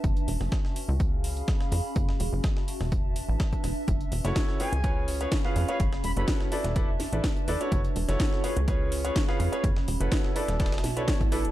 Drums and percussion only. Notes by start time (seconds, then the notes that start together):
0.04 kick, closed hi-hat
0.17 closed hi-hat
0.28 closed hi-hat, open hi-hat
0.41 snare
0.52 kick, snare, closed hi-hat
0.65 snare
0.76 closed hi-hat, open hi-hat
1.00 kick, closed hi-hat
1.24 open hi-hat
1.37 closed hi-hat
1.48 kick, snare, closed hi-hat
1.61 snare
1.72 closed hi-hat, open hi-hat
1.96 kick, closed hi-hat
2.09 snare
2.20 closed hi-hat, open hi-hat
2.44 kick, snare, closed hi-hat
2.57 snare
2.68 closed hi-hat, open hi-hat
2.81 snare
2.92 kick, closed hi-hat
3.16 closed hi-hat, open hi-hat
3.40 kick, snare, closed hi-hat
3.53 kick, closed hi-hat
3.64 snare, closed hi-hat, open hi-hat
3.88 kick, closed hi-hat
4.01 closed hi-hat
4.12 closed hi-hat, open hi-hat
4.25 snare, closed hi-hat
4.36 kick, snare, closed hi-hat
4.49 snare
4.60 closed hi-hat, open hi-hat
4.73 closed hi-hat
4.84 kick, closed hi-hat
5.08 open hi-hat
5.20 closed hi-hat
5.32 kick, snare, closed hi-hat
5.45 snare
5.56 closed hi-hat, open hi-hat
5.69 closed hi-hat
5.80 kick, closed hi-hat
5.93 snare
6.04 closed hi-hat, open hi-hat
6.17 closed hi-hat
6.28 kick, snare, closed hi-hat
6.41 snare
6.52 closed hi-hat, open hi-hat
6.64 snare, closed hi-hat
6.76 kick, closed hi-hat
7.00 snare, closed hi-hat, open hi-hat
7.13 closed hi-hat
7.24 kick, snare, closed hi-hat
7.37 closed hi-hat
7.48 snare, closed hi-hat, open hi-hat
7.61 closed hi-hat
7.72 kick, closed hi-hat
7.85 closed hi-hat
7.96 closed hi-hat, open hi-hat
8.09 snare, closed hi-hat
8.20 kick, snare, closed hi-hat
8.33 snare
8.44 closed hi-hat, open hi-hat
8.57 closed hi-hat
8.68 kick, closed hi-hat
8.92 open hi-hat
9.05 closed hi-hat
9.16 kick, snare, closed hi-hat
9.29 snare
9.40 closed hi-hat, open hi-hat
9.53 closed hi-hat
9.64 kick, closed hi-hat
9.77 snare
9.88 closed hi-hat, open hi-hat
10.01 closed hi-hat
10.12 kick, snare, closed hi-hat
10.24 snare
10.36 closed hi-hat, open hi-hat
10.48 snare, closed hi-hat
10.60 kick, snare, closed hi-hat
10.66 snare, closed hi-hat
10.72 snare, closed hi-hat
10.78 snare, closed hi-hat
10.84 snare, closed hi-hat, open hi-hat
10.97 closed hi-hat
11.08 kick, snare, closed hi-hat
11.21 kick, closed hi-hat
11.32 snare, closed hi-hat, open hi-hat
11.45 closed hi-hat